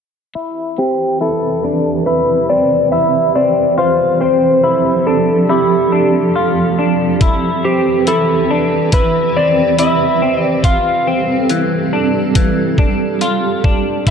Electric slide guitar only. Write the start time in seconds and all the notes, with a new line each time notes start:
0.79 G4
1.22 A4
2.06 B4
2.50 D5
2.92 E5
3.36 D5
3.79 C5
4.21 C5
5.07 A4
5.50 G4
7.65 G4
8.08 A4
8.94 B4
9.37 D5
9.79 E5
10.42 D5
10.65 F5